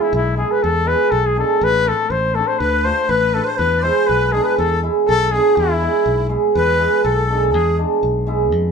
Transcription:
Already playing: hammered dulcimer G#3
0.02 cornet E4
0.13 fingered electric bass B1, cornet E4
0.36 hammered dulcimer G#3 B3 E4, cornet G#4
0.51 cornet B4
0.63 fingered electric bass E2, cornet A4
0.85 hammered dulcimer G#3 B3 E4, cornet B4
1.11 fingered electric bass B1, cornet A4
1.27 cornet G#4
1.36 hammered dulcimer G#3 B3 D4, cornet A4
1.61 fingered electric bass A1, cornet B4
1.85 hammered dulcimer A3 C4 E4, cornet A4
2.10 fingered electric bass A1, cornet C5
2.35 hammered dulcimer A3 C4 D4, cornet A4
2.47 cornet C5
2.59 fingered electric bass D2, cornet B4, accordion B4
2.84 hammered dulcimer A3 D4 F4, accordion C5, cornet C5
3.03 accordion C5
3.09 fingered electric bass A1, accordion B4, cornet B4
3.33 hammered dulcimer A3 D4 E4, cornet A4
3.45 cornet C5, accordion C5
3.57 fingered electric bass E2, cornet B4, accordion B4
3.77 accordion D5
3.82 hammered dulcimer G#3 B3 E4, accordion C5, cornet C5
4.07 fingered electric bass B1, cornet B4, accordion B4
4.32 hammered dulcimer G#3 B3 D4, cornet G#4, accordion G#4
4.43 cornet B4, accordion B4
4.57 fingered electric bass E2, accordion A4, cornet A4
4.63 accordion G#4
4.69 accordion A4
4.82 hammered dulcimer G#3 B3 E4
5.06 fingered electric bass B1, accordion A4, cornet A4
5.32 hammered dulcimer G#3 B3 D4, cornet G#4, accordion G#4
5.56 fingered electric bass E2, cornet E4, accordion E4
5.81 hammered dulcimer G#3 B3 E4
6.06 fingered electric bass B1
6.29 hammered dulcimer G#3 B3 E4
6.55 fingered electric bass E2, accordion B4, cornet B4
6.78 hammered dulcimer G#3 B3 E4
7.04 fingered electric bass B1, cornet A4, accordion A4
7.29 hammered dulcimer G#3 B3 D4
7.49 cornet G#4, accordion A4
7.54 fingered electric bass E2, accordion G#4
7.78 hammered dulcimer G#3 B3 D4
8.03 fingered electric bass B1
8.27 hammered dulcimer G#3 B3 E4
8.52 fingered electric bass F2

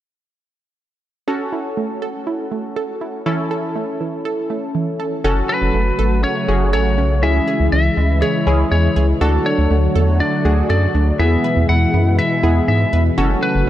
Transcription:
1.28 analog polysynth C#4 F#4 A4, synth arpeggio sound A4
1.52 synth arpeggio sound E4
1.77 synth arpeggio sound A3
2.02 synth arpeggio sound A4
2.27 synth arpeggio sound E4
2.52 synth arpeggio sound A3
2.76 synth arpeggio sound A4
3.01 synth arpeggio sound E4
3.26 synth arpeggio sound E3, analog polysynth C#4 E4 A4
3.51 synth arpeggio sound A4
3.76 synth arpeggio sound A3
4.00 synth arpeggio sound E3
4.25 synth arpeggio sound A4
4.50 synth arpeggio sound A3
4.75 synth arpeggio sound E3
5.00 synth arpeggio sound A4
5.24 analog synth bass F#1, analog synth pad C#3 F#3 A3 F#4, analog polysynth C#4 F#4 A4, synth arpeggio sound A4
5.49 synth arpeggio sound C#4, lead electric guitar B4
5.62 analog synth bass F#1
5.74 analog synth bass F#1, synth arpeggio sound A3
5.99 analog synth bass G#1, synth arpeggio sound A4
6.24 synth arpeggio sound C#4, lead electric guitar C#5
6.48 analog synth bass F#1, synth arpeggio sound A3, analog polysynth C#4 F#4 G#4
6.73 analog synth bass A1, synth arpeggio sound A4, lead electric guitar C#5
6.98 analog synth bass B1, synth arpeggio sound C#4
7.23 analog synth bass C#2, analog synth pad E3 G#3 E4, synth arpeggio sound G#3, analog polysynth C#4 E4 G#4, lead electric guitar E5
7.48 synth arpeggio sound G#4
7.60 analog synth bass C#2
7.72 analog synth bass C#2, synth arpeggio sound C#4, lead electric guitar E5
7.97 analog synth bass D2, synth arpeggio sound G#3
8.22 synth arpeggio sound G#4, lead electric guitar C#5
8.47 analog synth bass C#2, synth arpeggio sound C#4, analog polysynth C#4 E4 G#4
8.71 analog synth bass E2, synth arpeggio sound G#3, lead electric guitar C#5
8.96 analog synth bass C#2, synth arpeggio sound G#4
9.21 analog synth bass D2, analog synth pad D3 F#3 A3 F#4, analog polysynth D4 F#4 A4, synth arpeggio sound A4
9.46 synth arpeggio sound D4, lead electric guitar C#5
9.58 analog synth bass D2
9.71 analog synth bass D2, synth arpeggio sound A3
9.95 analog synth bass E2, synth arpeggio sound A4
10.20 synth arpeggio sound D4, lead electric guitar D5
10.45 analog synth bass D2, synth arpeggio sound A3, analog polysynth D4 F#4 G#4
10.70 analog synth bass F#2, synth arpeggio sound A4, lead electric guitar D5
10.95 analog synth bass D2, synth arpeggio sound D4
11.19 analog synth bass E2, analog synth pad B2 E3 G#3 E4, analog polysynth B3 E4 G#4, synth arpeggio sound B3, lead electric guitar E5
11.44 synth arpeggio sound B4
11.57 analog synth bass E2
11.69 analog synth bass E2, synth arpeggio sound E4, lead electric guitar F#5
11.94 analog synth bass F#2, synth arpeggio sound B3
12.19 synth arpeggio sound B4, lead electric guitar E5
12.43 analog synth bass E2, analog polysynth B3 E4 G#4, synth arpeggio sound E4
12.68 analog synth bass G#2, synth arpeggio sound B3, lead electric guitar E5
12.93 analog synth bass E2, synth arpeggio sound B4
13.18 analog synth bass F#1, analog synth pad C#3 F#3 A3 F#4, analog polysynth C#4 F#4 A4, synth arpeggio sound C#5
13.43 synth arpeggio sound F#4, lead electric guitar B4
13.55 analog synth bass F#1

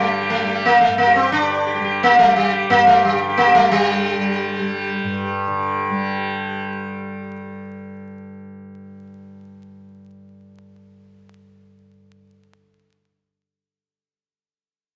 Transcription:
Already playing: tanpura G2 D3 G3
0.04 sitar G4
0.21 sitar G4
0.30 sitar A3
0.38 tanpura G3, sitar G4
0.47 sitar G4
0.55 sitar G4
0.65 sitar A#3
0.81 sitar A3
0.86 tanpura G2
0.98 sitar A#3
1.07 sitar G4
1.16 sitar C4
1.24 sitar G4
1.32 tanpura D3, sitar D4
1.41 sitar G4
1.67 sitar G4
1.75 tanpura G3, sitar G4
1.84 sitar G4
2.03 sitar A#3
2.10 sitar G4
2.19 tanpura G3, sitar A3
2.27 sitar G4
2.36 sitar G3
2.44 sitar G4
2.53 sitar G4
2.68 tanpura G2, sitar A#3
2.79 sitar G4
2.87 sitar A3
2.95 sitar G4
3.05 sitar G3
3.11 tanpura D3, sitar G4
3.21 sitar G4
3.29 sitar G4
3.37 sitar A#3
3.47 sitar G4
3.55 tanpura G3, sitar A3
3.64 sitar G4
3.70 tanpura D3, sitar G3
4.15 tanpura G3
4.59 tanpura G3
5.03 tanpura G2
5.47 tanpura D3
5.90 tanpura G3

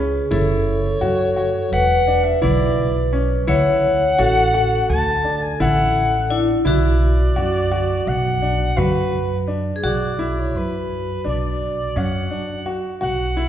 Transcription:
Already playing: upright bass C#2, grand piano C#4, vibraphone G#4
0.31 upright bass F#1, grand piano E4, vibraphone A4, soprano saxophone C#5, frame drum
1.01 upright bass F#2, grand piano F#4
1.36 grand piano F#4, frame drum
1.72 upright bass E1, vibraphone B4, soprano saxophone F#5
2.07 grand piano D4, frame drum
2.24 soprano saxophone E5
2.42 upright bass B1, grand piano E4, soprano saxophone D5, frame drum
3.13 grand piano C#4
3.47 upright bass D2, grand piano E4, vibraphone C#5, soprano saxophone F#5, frame drum
4.18 upright bass A1, grand piano F#4, vibraphone A4
4.54 grand piano F#4, frame drum
4.89 upright bass D2, soprano saxophone A5
5.24 grand piano D4, frame drum
5.43 soprano saxophone G#5
5.60 upright bass A1, grand piano E4, soprano saxophone F#5, frame drum
6.30 grand piano D4, vibraphone E4
6.65 upright bass B1, grand piano E4, vibraphone F#4, soprano saxophone D5, frame drum
7.36 upright bass F#2, grand piano F#4, frame drum
7.71 grand piano F#4, frame drum
8.07 upright bass B1, soprano saxophone F#5
8.42 grand piano D4
8.77 upright bass F#2, grand piano F#4, soprano saxophone B4, frame drum
9.47 grand piano D4
9.76 vibraphone G#4
9.83 upright bass B1, grand piano F#4, vibraphone F#4, soprano saxophone D5
10.19 grand piano E4
10.39 soprano saxophone C#5
10.55 upright bass F#2, soprano saxophone B4
11.24 upright bass B1, grand piano D4
11.29 soprano saxophone D5
11.96 upright bass F#2, grand piano C#4, soprano saxophone F#5
12.31 grand piano D4
12.66 grand piano F#4
13.01 upright bass B1, grand piano F#4, soprano saxophone F#5
13.37 grand piano E4

